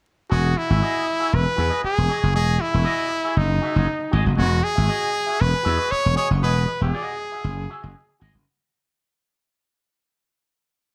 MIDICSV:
0, 0, Header, 1, 6, 480
1, 0, Start_track
1, 0, Tempo, 509771
1, 289, Time_signature, 4, 2, 24, 8
1, 10305, End_track
2, 0, Start_track
2, 0, Title_t, "Clean electric guitar"
2, 0, Program_c, 0, 27
2, 278, Note_on_c, 0, 66, 74
2, 285, Note_on_c, 0, 68, 83
2, 295, Note_on_c, 0, 75, 70
2, 478, Note_off_c, 0, 66, 0
2, 482, Note_off_c, 0, 68, 0
2, 487, Note_off_c, 0, 75, 0
2, 644, Note_on_c, 0, 76, 62
2, 654, Note_on_c, 0, 68, 56
2, 664, Note_on_c, 0, 66, 55
2, 750, Note_off_c, 0, 66, 0
2, 758, Note_off_c, 0, 68, 0
2, 761, Note_on_c, 0, 66, 71
2, 769, Note_on_c, 0, 68, 76
2, 775, Note_off_c, 0, 76, 0
2, 778, Note_on_c, 0, 75, 89
2, 959, Note_off_c, 0, 66, 0
2, 963, Note_off_c, 0, 68, 0
2, 967, Note_off_c, 0, 75, 0
2, 1123, Note_on_c, 0, 76, 75
2, 1131, Note_on_c, 0, 68, 62
2, 1136, Note_on_c, 0, 66, 58
2, 1222, Note_off_c, 0, 66, 0
2, 1227, Note_off_c, 0, 68, 0
2, 1241, Note_off_c, 0, 76, 0
2, 1470, Note_on_c, 0, 66, 56
2, 1482, Note_on_c, 0, 68, 60
2, 1488, Note_on_c, 0, 76, 56
2, 1596, Note_off_c, 0, 68, 0
2, 1596, Note_off_c, 0, 76, 0
2, 1600, Note_on_c, 0, 75, 63
2, 1605, Note_off_c, 0, 66, 0
2, 1608, Note_on_c, 0, 68, 59
2, 1617, Note_on_c, 0, 66, 46
2, 1706, Note_off_c, 0, 66, 0
2, 1709, Note_off_c, 0, 68, 0
2, 1718, Note_off_c, 0, 75, 0
2, 1960, Note_on_c, 0, 66, 63
2, 1971, Note_on_c, 0, 68, 69
2, 1978, Note_on_c, 0, 75, 63
2, 2082, Note_off_c, 0, 75, 0
2, 2093, Note_off_c, 0, 68, 0
2, 2123, Note_off_c, 0, 66, 0
2, 2202, Note_on_c, 0, 66, 67
2, 2211, Note_on_c, 0, 68, 73
2, 2217, Note_on_c, 0, 75, 76
2, 2398, Note_off_c, 0, 66, 0
2, 2402, Note_off_c, 0, 68, 0
2, 2406, Note_off_c, 0, 75, 0
2, 2565, Note_on_c, 0, 76, 67
2, 2576, Note_on_c, 0, 68, 54
2, 2582, Note_on_c, 0, 66, 54
2, 2655, Note_off_c, 0, 66, 0
2, 2663, Note_off_c, 0, 68, 0
2, 2666, Note_on_c, 0, 66, 89
2, 2675, Note_on_c, 0, 68, 84
2, 2680, Note_off_c, 0, 76, 0
2, 2684, Note_on_c, 0, 75, 97
2, 2870, Note_off_c, 0, 66, 0
2, 2874, Note_off_c, 0, 68, 0
2, 2878, Note_off_c, 0, 75, 0
2, 3047, Note_on_c, 0, 76, 67
2, 3056, Note_on_c, 0, 68, 67
2, 3061, Note_on_c, 0, 66, 57
2, 3153, Note_off_c, 0, 66, 0
2, 3159, Note_off_c, 0, 68, 0
2, 3174, Note_off_c, 0, 76, 0
2, 3399, Note_on_c, 0, 66, 64
2, 3406, Note_on_c, 0, 68, 64
2, 3417, Note_on_c, 0, 76, 66
2, 3521, Note_off_c, 0, 76, 0
2, 3524, Note_off_c, 0, 68, 0
2, 3525, Note_on_c, 0, 75, 58
2, 3530, Note_off_c, 0, 66, 0
2, 3535, Note_on_c, 0, 68, 48
2, 3542, Note_on_c, 0, 66, 53
2, 3631, Note_off_c, 0, 66, 0
2, 3638, Note_off_c, 0, 68, 0
2, 3642, Note_off_c, 0, 75, 0
2, 3872, Note_on_c, 0, 66, 84
2, 3882, Note_on_c, 0, 68, 92
2, 3888, Note_on_c, 0, 75, 110
2, 3992, Note_off_c, 0, 75, 0
2, 4003, Note_off_c, 0, 68, 0
2, 4072, Note_off_c, 0, 66, 0
2, 4109, Note_on_c, 0, 66, 67
2, 4119, Note_on_c, 0, 68, 72
2, 4125, Note_on_c, 0, 75, 80
2, 4310, Note_off_c, 0, 66, 0
2, 4315, Note_off_c, 0, 68, 0
2, 4318, Note_off_c, 0, 75, 0
2, 4479, Note_on_c, 0, 76, 69
2, 4490, Note_on_c, 0, 68, 60
2, 4495, Note_on_c, 0, 66, 52
2, 4575, Note_off_c, 0, 66, 0
2, 4585, Note_off_c, 0, 68, 0
2, 4587, Note_on_c, 0, 66, 73
2, 4596, Note_on_c, 0, 68, 82
2, 4599, Note_off_c, 0, 76, 0
2, 4603, Note_on_c, 0, 75, 92
2, 4789, Note_off_c, 0, 66, 0
2, 4794, Note_off_c, 0, 68, 0
2, 4797, Note_off_c, 0, 75, 0
2, 4956, Note_on_c, 0, 76, 74
2, 4963, Note_on_c, 0, 68, 61
2, 4972, Note_on_c, 0, 66, 59
2, 5063, Note_off_c, 0, 66, 0
2, 5068, Note_off_c, 0, 68, 0
2, 5082, Note_off_c, 0, 76, 0
2, 5301, Note_on_c, 0, 66, 63
2, 5312, Note_on_c, 0, 68, 60
2, 5319, Note_on_c, 0, 76, 64
2, 5430, Note_off_c, 0, 76, 0
2, 5431, Note_off_c, 0, 68, 0
2, 5433, Note_on_c, 0, 75, 58
2, 5439, Note_off_c, 0, 66, 0
2, 5442, Note_on_c, 0, 68, 50
2, 5450, Note_on_c, 0, 66, 45
2, 5544, Note_off_c, 0, 66, 0
2, 5550, Note_off_c, 0, 68, 0
2, 5556, Note_off_c, 0, 75, 0
2, 5792, Note_on_c, 0, 66, 91
2, 5804, Note_on_c, 0, 68, 91
2, 5813, Note_on_c, 0, 75, 95
2, 5916, Note_off_c, 0, 75, 0
2, 5927, Note_off_c, 0, 68, 0
2, 5993, Note_off_c, 0, 66, 0
2, 6045, Note_on_c, 0, 66, 83
2, 6052, Note_on_c, 0, 68, 84
2, 6063, Note_on_c, 0, 75, 90
2, 6239, Note_off_c, 0, 66, 0
2, 6243, Note_off_c, 0, 68, 0
2, 6248, Note_off_c, 0, 75, 0
2, 6411, Note_on_c, 0, 76, 60
2, 6423, Note_on_c, 0, 68, 59
2, 6427, Note_on_c, 0, 66, 52
2, 6515, Note_off_c, 0, 66, 0
2, 6521, Note_off_c, 0, 68, 0
2, 6526, Note_on_c, 0, 66, 77
2, 6532, Note_on_c, 0, 68, 87
2, 6537, Note_off_c, 0, 76, 0
2, 6541, Note_on_c, 0, 75, 85
2, 6720, Note_off_c, 0, 66, 0
2, 6723, Note_off_c, 0, 68, 0
2, 6727, Note_off_c, 0, 75, 0
2, 6891, Note_on_c, 0, 76, 59
2, 6901, Note_on_c, 0, 68, 61
2, 6910, Note_on_c, 0, 66, 49
2, 6995, Note_off_c, 0, 66, 0
2, 7001, Note_off_c, 0, 68, 0
2, 7018, Note_off_c, 0, 76, 0
2, 7242, Note_on_c, 0, 66, 70
2, 7250, Note_on_c, 0, 68, 70
2, 7258, Note_on_c, 0, 76, 80
2, 7366, Note_off_c, 0, 68, 0
2, 7367, Note_off_c, 0, 76, 0
2, 7371, Note_on_c, 0, 75, 58
2, 7374, Note_off_c, 0, 66, 0
2, 7377, Note_on_c, 0, 68, 59
2, 7385, Note_on_c, 0, 66, 57
2, 7475, Note_off_c, 0, 66, 0
2, 7480, Note_off_c, 0, 68, 0
2, 7484, Note_off_c, 0, 75, 0
2, 7719, Note_on_c, 0, 66, 103
2, 7729, Note_on_c, 0, 68, 92
2, 7738, Note_on_c, 0, 75, 101
2, 7842, Note_off_c, 0, 75, 0
2, 7852, Note_off_c, 0, 68, 0
2, 7917, Note_off_c, 0, 66, 0
2, 10305, End_track
3, 0, Start_track
3, 0, Title_t, "Trumpet"
3, 0, Program_c, 1, 56
3, 286, Note_on_c, 1, 66, 89
3, 537, Note_on_c, 1, 64, 95
3, 551, Note_off_c, 1, 66, 0
3, 1264, Note_on_c, 1, 71, 98
3, 1278, Note_off_c, 1, 64, 0
3, 1730, Note_off_c, 1, 71, 0
3, 1735, Note_on_c, 1, 68, 94
3, 2176, Note_off_c, 1, 68, 0
3, 2216, Note_on_c, 1, 68, 107
3, 2452, Note_on_c, 1, 64, 100
3, 2466, Note_off_c, 1, 68, 0
3, 3174, Note_on_c, 1, 63, 80
3, 3188, Note_off_c, 1, 64, 0
3, 3888, Note_off_c, 1, 63, 0
3, 4121, Note_on_c, 1, 66, 93
3, 4363, Note_on_c, 1, 68, 103
3, 4377, Note_off_c, 1, 66, 0
3, 5087, Note_on_c, 1, 71, 93
3, 5101, Note_off_c, 1, 68, 0
3, 5563, Note_on_c, 1, 73, 98
3, 5577, Note_off_c, 1, 71, 0
3, 5803, Note_off_c, 1, 73, 0
3, 5807, Note_on_c, 1, 73, 96
3, 5914, Note_off_c, 1, 73, 0
3, 6055, Note_on_c, 1, 71, 95
3, 6391, Note_off_c, 1, 71, 0
3, 6426, Note_on_c, 1, 68, 86
3, 7695, Note_off_c, 1, 68, 0
3, 10305, End_track
4, 0, Start_track
4, 0, Title_t, "Slap bass"
4, 0, Program_c, 2, 36
4, 295, Note_on_c, 2, 28, 92
4, 504, Note_off_c, 2, 28, 0
4, 661, Note_on_c, 2, 32, 89
4, 758, Note_off_c, 2, 32, 0
4, 1253, Note_on_c, 2, 28, 77
4, 1362, Note_off_c, 2, 28, 0
4, 1488, Note_on_c, 2, 40, 77
4, 1599, Note_off_c, 2, 40, 0
4, 1864, Note_on_c, 2, 28, 87
4, 1958, Note_off_c, 2, 28, 0
4, 2101, Note_on_c, 2, 30, 73
4, 2211, Note_off_c, 2, 30, 0
4, 2211, Note_on_c, 2, 28, 93
4, 2420, Note_off_c, 2, 28, 0
4, 2581, Note_on_c, 2, 28, 84
4, 2676, Note_off_c, 2, 28, 0
4, 3168, Note_on_c, 2, 30, 89
4, 3378, Note_off_c, 2, 30, 0
4, 3538, Note_on_c, 2, 30, 88
4, 3634, Note_off_c, 2, 30, 0
4, 3888, Note_on_c, 2, 32, 102
4, 3998, Note_off_c, 2, 32, 0
4, 4011, Note_on_c, 2, 30, 83
4, 4110, Note_off_c, 2, 30, 0
4, 4126, Note_on_c, 2, 28, 101
4, 4336, Note_off_c, 2, 28, 0
4, 4497, Note_on_c, 2, 32, 88
4, 4593, Note_off_c, 2, 32, 0
4, 5093, Note_on_c, 2, 28, 89
4, 5200, Note_off_c, 2, 28, 0
4, 5328, Note_on_c, 2, 40, 87
4, 5438, Note_off_c, 2, 40, 0
4, 5704, Note_on_c, 2, 28, 89
4, 5798, Note_off_c, 2, 28, 0
4, 5938, Note_on_c, 2, 30, 84
4, 6054, Note_off_c, 2, 30, 0
4, 6054, Note_on_c, 2, 28, 88
4, 6261, Note_off_c, 2, 28, 0
4, 6414, Note_on_c, 2, 28, 88
4, 6512, Note_off_c, 2, 28, 0
4, 7007, Note_on_c, 2, 30, 90
4, 7218, Note_off_c, 2, 30, 0
4, 7377, Note_on_c, 2, 30, 85
4, 7475, Note_off_c, 2, 30, 0
4, 7734, Note_on_c, 2, 32, 98
4, 7842, Note_off_c, 2, 32, 0
4, 7857, Note_on_c, 2, 30, 74
4, 7955, Note_off_c, 2, 30, 0
4, 10305, End_track
5, 0, Start_track
5, 0, Title_t, "Muted clean electric guitar strokes"
5, 521, Note_on_c, 9, 29, 43
5, 615, Note_off_c, 9, 29, 0
5, 1001, Note_on_c, 9, 29, 34
5, 1095, Note_off_c, 9, 29, 0
5, 1233, Note_on_c, 9, 29, 45
5, 1328, Note_off_c, 9, 29, 0
5, 1362, Note_on_c, 9, 29, 52
5, 1456, Note_off_c, 9, 29, 0
5, 1717, Note_on_c, 9, 29, 41
5, 1811, Note_off_c, 9, 29, 0
5, 2094, Note_on_c, 9, 29, 46
5, 2188, Note_off_c, 9, 29, 0
5, 2440, Note_on_c, 9, 29, 37
5, 2534, Note_off_c, 9, 29, 0
5, 2914, Note_on_c, 9, 29, 42
5, 3008, Note_off_c, 9, 29, 0
5, 3164, Note_on_c, 9, 29, 42
5, 3258, Note_off_c, 9, 29, 0
5, 3293, Note_on_c, 9, 29, 51
5, 3387, Note_off_c, 9, 29, 0
5, 3642, Note_on_c, 9, 29, 37
5, 3736, Note_off_c, 9, 29, 0
5, 3767, Note_on_c, 9, 29, 41
5, 3861, Note_off_c, 9, 29, 0
5, 4004, Note_on_c, 9, 29, 46
5, 4098, Note_off_c, 9, 29, 0
5, 4353, Note_on_c, 9, 29, 38
5, 4448, Note_off_c, 9, 29, 0
5, 4827, Note_on_c, 9, 29, 39
5, 4921, Note_off_c, 9, 29, 0
5, 5074, Note_on_c, 9, 29, 41
5, 5168, Note_off_c, 9, 29, 0
5, 5196, Note_on_c, 9, 29, 47
5, 5290, Note_off_c, 9, 29, 0
5, 5555, Note_on_c, 9, 29, 38
5, 5649, Note_off_c, 9, 29, 0
5, 5682, Note_on_c, 9, 29, 55
5, 5776, Note_off_c, 9, 29, 0
5, 5927, Note_on_c, 9, 29, 45
5, 6021, Note_off_c, 9, 29, 0
5, 6284, Note_on_c, 9, 29, 42
5, 6378, Note_off_c, 9, 29, 0
5, 6762, Note_on_c, 9, 29, 38
5, 6857, Note_off_c, 9, 29, 0
5, 7006, Note_on_c, 9, 29, 43
5, 7100, Note_off_c, 9, 29, 0
5, 7128, Note_on_c, 9, 29, 49
5, 7222, Note_off_c, 9, 29, 0
5, 7486, Note_on_c, 9, 29, 41
5, 7580, Note_off_c, 9, 29, 0
5, 7613, Note_on_c, 9, 29, 47
5, 7708, Note_off_c, 9, 29, 0
5, 7853, Note_on_c, 9, 29, 43
5, 7947, Note_off_c, 9, 29, 0
5, 10305, End_track
6, 0, Start_track
6, 0, Title_t, "Muted slap bass strokes"
6, 1733, Note_on_c, 9, 29, 50
6, 1827, Note_off_c, 9, 29, 0
6, 5573, Note_on_c, 9, 29, 52
6, 5667, Note_off_c, 9, 29, 0
6, 10305, End_track
0, 0, End_of_file